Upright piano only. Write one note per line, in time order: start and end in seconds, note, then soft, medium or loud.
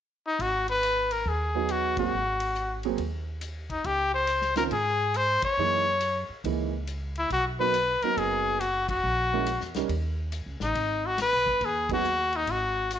1.55 1.95 F#3 medium
1.55 1.96 B3 soft
1.55 1.96 D#4 soft
1.55 1.95 G#4 medium
1.99 2.12 F#3 medium
1.99 2.12 A#3 medium
1.99 2.12 C4 soft
1.99 2.12 G#4 medium
2.85 2.98 F#3 medium
2.85 2.98 A#3 medium
2.85 2.98 C4 medium
2.85 2.98 G#4 medium
4.57 4.70 D#3 medium
4.57 4.70 C4 medium
4.57 4.71 C#4 medium
4.57 4.71 F4 medium
5.59 5.84 E3 soft
5.59 5.84 A#3 soft
5.59 5.84 D#4 soft
5.59 5.84 G#4 medium
6.45 6.70 E3 medium
6.45 6.71 A#3 soft
6.45 6.70 D#4 medium
6.45 6.71 G#4 medium
7.59 7.73 F#3 medium
7.59 7.73 B3 soft
7.59 7.73 D#4 medium
7.59 7.73 A#4 medium
8.04 8.58 F#3 medium
8.04 8.58 B3 soft
8.04 8.58 D#4 soft
8.04 8.58 A#4 medium
9.33 9.46 G#3 medium
9.33 9.46 C#4 medium
9.33 9.46 E4 soft
9.33 9.46 A#4 medium
9.76 9.89 G3 medium
9.76 9.89 C#4 medium
9.76 9.89 D#4 medium
9.76 9.89 A#4 medium
11.91 12.04 F#3 medium
11.91 12.04 B3 soft
11.91 12.04 D#4 soft
11.91 12.04 G#4 medium